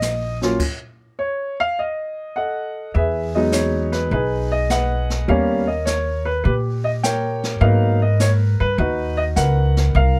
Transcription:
Already playing: upright bass A#1, upright piano D#5
0.02 snare, hi-hat pedal
0.41 upright piano F#3 A#3 C#4 F4, snare
0.60 kick, crash
1.19 upright piano C#5
1.60 upright piano F5
1.79 upright piano D#5
2.36 upright piano A4 D#5 F#5
2.94 upright bass E2, upright piano G#4 B4 E5, brush sweep
3.35 upright piano F#3 G#3 B3 D#4 D#5
3.52 upright piano C#5, snare, hi-hat pedal
3.92 upright piano B4, snare
4.11 upright bass B1, upright piano D#4 G#4 B4, brush sweep
4.52 upright piano D#5
4.70 upright piano B4 D#5 F#5, snare, hi-hat pedal
5.10 snare
5.28 upright bass D#2, upright piano G3 A#3 B3 C#4 A#4 C#5 F5, brush sweep
5.67 upright piano D#5
5.85 upright piano C#5, snare, hi-hat pedal
6.25 upright piano B4
6.44 upright bass A#2, upright piano G4 B4, brush sweep
6.84 upright piano D#5
7.03 upright piano A#4 C#5 G5, snare, hi-hat pedal
7.44 snare
7.61 upright bass G#2, upright piano F#3 A#3 B3 D#4 A#4 B4 F5, brush sweep
8.02 upright piano D#5
8.20 upright piano C#5, snare, hi-hat pedal
8.60 upright bass G2, upright piano B4
8.78 upright bass D#2, upright piano D#4 F#4 B4, brush sweep
9.17 upright piano D#5
9.36 upright bass C#2, upright piano A#4 B4 F#5, snare, hi-hat pedal
9.77 snare
9.95 upright bass C2, upright piano A#4 F5, brush sweep

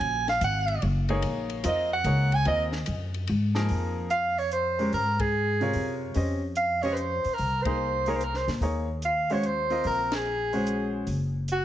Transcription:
Already playing: soprano saxophone G#5
0.00 upright bass A#1, ride
0.28 soprano saxophone F5, snare, ride
0.41 upright bass G#1, soprano saxophone F#5, hi-hat pedal, ride
0.68 ride
0.82 upright bass F#1, ride
1.09 grand piano A#3 D#4 G#4 C#5, ride
1.22 upright bass A#1, ride
1.50 ride
1.64 upright bass F2, grand piano C4 F4 A#4 D#5, hi-hat pedal, ride
1.68 soprano saxophone D#5
1.93 soprano saxophone F#5
2.04 upright bass C#2, grand piano A#3 D#4 G#4 C#5, hi-hat pedal, ride
2.32 soprano saxophone G#5, ride
2.45 upright bass D#2, grand piano C4 F4 A#4 D#5, soprano saxophone D#5, ride
2.72 snare
2.86 upright bass F#2, hi-hat pedal, ride
3.14 ride
3.27 upright bass G#2, ride
3.55 grand piano F3 A#3 D#4 G#4 A#4, snare
3.69 upright bass F2, open hi-hat
4.10 soprano saxophone F5, closed hi-hat
4.38 soprano saxophone C#5, open hi-hat
4.51 soprano saxophone C5, closed hi-hat
4.79 grand piano G#3 C#4 G4 A#4, open hi-hat
4.92 upright bass G#2, soprano saxophone A#4, open hi-hat
5.19 soprano saxophone G#4, kick, ride
5.61 grand piano C3 F4 A#4 C#5, open hi-hat
5.73 upright bass F#2, open hi-hat
6.14 upright bass F2, grand piano C#4 G4 C5 D#5, open hi-hat
6.55 soprano saxophone F5, closed hi-hat
6.82 grand piano C#4 G4 C5 D#5, soprano saxophone C#5, open hi-hat
6.91 soprano saxophone B4 C5
6.97 closed hi-hat
7.24 muted upright bass stroke, open hi-hat
7.34 soprano saxophone A#4
7.38 upright bass C2, open hi-hat
7.62 grand piano A#3 D#4, soprano saxophone C5, kick, ride
7.67 grand piano G#4 C5
8.06 grand piano A#3 D#4 G#4 A#4, soprano saxophone C#5, open hi-hat
8.16 soprano saxophone C5
8.21 soprano saxophone A#4, closed hi-hat
8.34 soprano saxophone C5, snare
8.47 upright bass A#2, snare, open hi-hat
8.60 upright bass D#2, grand piano A#3 D#4 G#4 C#5, open hi-hat
9.02 soprano saxophone F5, closed hi-hat
9.30 grand piano G#3 C#4 F#4 C5, soprano saxophone C#5, open hi-hat
9.43 soprano saxophone C5, closed hi-hat
9.70 grand piano C4 F4 A#4 D#5, open hi-hat
9.84 upright bass A#1, soprano saxophone A#4, open hi-hat
10.12 soprano saxophone G#4, snare, ride
10.53 grand piano G#3 C#4 F#4 C5, open hi-hat
10.67 closed hi-hat
11.07 upright bass F#1, open hi-hat
11.48 closed hi-hat
11.52 soprano saxophone F#4

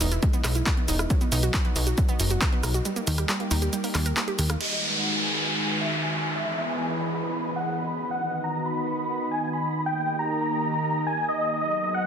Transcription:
Already playing: analog synth pad G#3 B3 D#4 E4
0.01 analog synth bass E1, synth arpeggio sound D#4, open hi-hat, shaker
0.12 synth arpeggio sound E4, closed hi-hat, shaker
0.23 synth arpeggio sound G#3, kick, closed hi-hat, shaker
0.33 synth arpeggio sound B3, closed hi-hat, shaker
0.44 analog synth bass B1, synth arpeggio sound D#4, cross-stick, clap, open hi-hat, shaker
0.55 synth arpeggio sound E4, closed hi-hat, shaker
0.66 synth arpeggio sound G#3, kick, clap, closed hi-hat, shaker
0.77 synth arpeggio sound B3, closed hi-hat
0.88 analog synth bass E1, synth arpeggio sound D#4, open hi-hat, shaker
0.99 synth arpeggio sound E4, cross-stick, closed hi-hat, shaker
1.10 synth arpeggio sound F#3, analog synth pad F#3 F#4, kick, closed hi-hat, shaker
1.21 synth arpeggio sound B3, closed hi-hat, shaker
1.32 analog synth bass B1, synth arpeggio sound D#4, open hi-hat, shaker
1.43 synth arpeggio sound F#4, closed hi-hat, shaker
1.54 synth arpeggio sound F#3, kick, clap, closed hi-hat, shaker
1.65 synth arpeggio sound B3, closed hi-hat
1.76 analog synth bass B1, synth arpeggio sound D#4, open hi-hat, shaker
1.87 synth arpeggio sound F#4, closed hi-hat, shaker
1.98 synth arpeggio sound F#3, kick, closed hi-hat, shaker
2.09 synth arpeggio sound B3, closed hi-hat, shaker
2.20 analog synth bass F#1, synth arpeggio sound D#4, open hi-hat, shaker
2.31 synth arpeggio sound F#4, closed hi-hat, shaker
2.41 kick, clap, closed hi-hat, shaker
2.52 synth arpeggio sound B3, closed hi-hat
2.63 analog synth bass B1, synth arpeggio sound D#4, cross-stick, open hi-hat, shaker
2.74 synth arpeggio sound F#4, closed hi-hat, shaker
2.85 analog synth pad G3 A#3 G4, synth arpeggio sound G3, closed hi-hat, shaker
2.96 synth arpeggio sound A#3, closed hi-hat, shaker
3.07 analog synth bass D#2, synth arpeggio sound D#4, open hi-hat, shaker
3.18 synth arpeggio sound G4, cross-stick, closed hi-hat, shaker
3.29 synth arpeggio sound G3, clap, closed hi-hat, shaker
3.40 synth arpeggio sound A#3, closed hi-hat
3.51 analog synth bass D#2, synth arpeggio sound D#4, open hi-hat, shaker
3.62 synth arpeggio sound G4, closed hi-hat, shaker
3.73 synth arpeggio sound G3, closed hi-hat, shaker
3.84 synth arpeggio sound A#3, open hi-hat, shaker
3.95 analog synth bass D#2, synth arpeggio sound G3, cross-stick, clap, open hi-hat, shaker
4.06 synth arpeggio sound A#4, closed hi-hat, shaker
4.17 synth arpeggio sound A#3, clap, closed hi-hat, shaker
4.28 synth arpeggio sound G4, closed hi-hat
4.39 analog synth bass D#2, synth arpeggio sound G4, open hi-hat, shaker
4.50 synth arpeggio sound A#3, cross-stick, closed hi-hat, shaker
4.61 analog synth pad D#3 G#3 F#4 B4, supersaw synth D#5, crash, downlifter
4.94 supersaw synth F#5
5.15 supersaw synth G#5
5.48 supersaw synth G#5
5.81 supersaw synth E5
6.03 supersaw synth G#5
6.36 analog synth pad E3 B3 G#4 D#5, supersaw synth E5
6.69 supersaw synth G#5
6.91 supersaw synth B5
7.23 supersaw synth B5
7.56 supersaw synth F#5
7.78 supersaw synth B5
8.11 analog synth pad D#3 B3 F#4, supersaw synth F#5
8.44 supersaw synth A#5
8.66 supersaw synth B5
8.99 supersaw synth B5
9.31 supersaw synth G#5
9.53 supersaw synth B5
9.86 analog synth pad D#3 A#3 G4, supersaw synth G5
10.19 supersaw synth A#5
10.41 supersaw synth A#5
10.74 supersaw synth A#5
11.07 supersaw synth G#5
11.28 supersaw synth D#5
11.61 analog synth pad F#3 B3 G#4, supersaw synth D#5
11.94 supersaw synth F#5

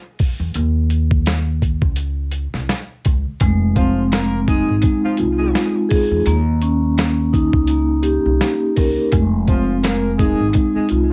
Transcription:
0.19 kick, open hi-hat
0.40 upright bass E2
0.54 upright bass D#2, closed hi-hat
0.90 closed hi-hat
1.11 kick
1.26 snare, closed hi-hat
1.62 kick, closed hi-hat
1.82 upright bass C#2, kick
1.96 closed hi-hat
2.31 closed hi-hat
2.54 upright bass C2, snare
2.69 snare, closed hi-hat
3.05 upright bass C#2, kick, closed hi-hat
3.40 upright bass F1, vibraphone G#3, kick, closed hi-hat
3.76 horn section F3 F4, vibraphone C4, kick, closed hi-hat
4.12 vibraphone G#3, horn section A#3 A#4, snare, closed hi-hat
4.47 horn section G#3 G#4, vibraphone D#4, kick, closed hi-hat
4.69 upright bass G#1
4.82 vibraphone G#3, kick, closed hi-hat
5.04 horn section F3 F4, muted upright bass stroke
5.17 upright bass C2, vibraphone F4, closed hi-hat
5.39 horn section G#3 G#4
5.54 vibraphone G#3, snare, closed hi-hat
5.89 vibraphone G#4, kick, open hi-hat
6.11 upright bass E2
6.26 upright bass D#2, vibraphone A#3, closed hi-hat
6.62 vibraphone C#4, closed hi-hat
6.98 vibraphone A#3, snare, closed hi-hat
7.33 vibraphone D#4, kick, closed hi-hat
7.53 upright bass C#2, kick
7.67 vibraphone A#3, closed hi-hat
8.03 vibraphone G4, closed hi-hat
8.26 upright bass C2
8.41 vibraphone A#3, snare, closed hi-hat
8.76 upright bass C#2, vibraphone A#4, kick, open hi-hat
9.12 upright bass F1, vibraphone G#3, kick, closed hi-hat
9.47 horn section F3 F4, vibraphone C4, kick, closed hi-hat
9.83 vibraphone G#3, horn section A#3 A#4, snare, closed hi-hat
10.18 horn section G#3 G#4, vibraphone D#4, kick, closed hi-hat
10.40 upright bass G#1
10.53 vibraphone G#3, kick, closed hi-hat
10.76 horn section G#3 G#4, muted upright bass stroke
10.89 upright bass C2, vibraphone F4, closed hi-hat

